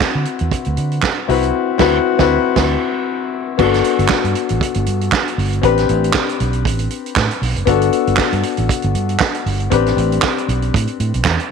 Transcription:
Already playing: grand piano C4 E4 F#4 B4
0.00 muted fingered electric bass stroke, kick, snare
0.15 fingered electric bass D3
0.25 closed hi-hat
0.39 fingered electric bass E2, closed hi-hat
0.52 kick, closed hi-hat
0.65 fingered electric bass D2, closed hi-hat
0.77 fingered electric bass D3, closed hi-hat
0.92 closed hi-hat
1.02 kick, snare, clap
1.28 fingered electric bass C2, grand piano C4 E4 F#4 B4, open hi-hat
1.43 closed hi-hat
1.78 fingered electric bass D2, grand piano C4 E4 F#4 B4, kick, snare, crash
2.19 fingered electric bass D2, grand piano C4 E4 F#4 B4, kick, snare
2.56 fingered electric bass D2, kick, snare, crash
3.58 fingered electric bass G1, grand piano B3 D4 F#4 A4, kick, crash
3.74 snare, closed hi-hat
3.84 closed hi-hat
3.99 fingered electric bass G1, closed hi-hat
4.08 muted fingered electric bass stroke, kick, snare, clap
4.24 fingered electric bass G2, closed hi-hat
4.35 closed hi-hat
4.49 fingered electric bass A1, closed hi-hat
4.61 kick, closed hi-hat
4.74 fingered electric bass G1, closed hi-hat
4.86 fingered electric bass G2, closed hi-hat
5.01 closed hi-hat
5.12 kick, snare, clap
5.27 closed hi-hat
5.38 fingered electric bass G1, open hi-hat
5.53 closed hi-hat
5.62 fingered electric bass A1, grand piano C4 D4 G4 B4, kick, closed hi-hat
5.78 snare, closed hi-hat
5.89 fingered electric bass A1, closed hi-hat
6.04 closed hi-hat
6.13 kick, snare, clap
6.29 closed hi-hat
6.40 fingered electric bass B1, closed hi-hat
6.53 closed hi-hat
6.65 fingered electric bass A1, kick, closed hi-hat
6.79 closed hi-hat
6.90 closed hi-hat
7.06 closed hi-hat
7.16 fingered electric bass A2, kick, snare, clap
7.31 closed hi-hat
7.42 fingered electric bass B1, open hi-hat
7.56 fingered electric bass F#1, closed hi-hat
7.66 fingered electric bass G1, grand piano B3 D4 F#4 A4, kick, closed hi-hat
7.82 closed hi-hat
7.93 closed hi-hat
8.07 fingered electric bass G1, closed hi-hat
8.17 muted fingered electric bass stroke, kick, snare, clap
8.33 fingered electric bass G2, closed hi-hat
8.43 closed hi-hat
8.57 fingered electric bass A1, closed hi-hat
8.69 kick, closed hi-hat
8.82 fingered electric bass G1, closed hi-hat
8.95 fingered electric bass G2, closed hi-hat
9.09 closed hi-hat
9.20 kick, snare, clap
9.34 closed hi-hat
9.46 fingered electric bass G1, open hi-hat
9.60 closed hi-hat
9.70 fingered electric bass A1, grand piano C4 D4 G4 B4, kick, closed hi-hat
9.86 snare, closed hi-hat
9.97 fingered electric bass A1, closed hi-hat
10.12 closed hi-hat
10.22 kick, snare, clap
10.38 closed hi-hat
10.48 fingered electric bass B1, closed hi-hat
10.62 closed hi-hat
10.74 fingered electric bass A2, kick, closed hi-hat
10.87 closed hi-hat
11.00 fingered electric bass A2, closed hi-hat
11.14 fingered electric bass B1, closed hi-hat
11.25 fingered electric bass E2, kick, snare, clap
11.40 closed hi-hat

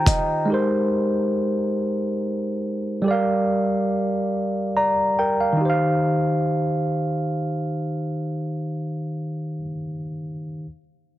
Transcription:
Already playing: tine electric piano D#3 D#4 F4 G4 C5 G5 A#5
0.06 tine electric piano D#5, kick, closed hi-hat
0.45 tine electric piano G#3 D#4
0.50 tine electric piano G4 A#4 C5
3.02 tine electric piano G3 G4
3.06 tine electric piano A4 D5
3.11 tine electric piano A#4 F5
4.77 tine electric piano D5 A#5
5.19 tine electric piano A#4 G5
5.41 tine electric piano F5
5.53 tine electric piano D#3
5.57 tine electric piano D#4
5.61 tine electric piano G4
5.65 tine electric piano C5
5.70 tine electric piano F5

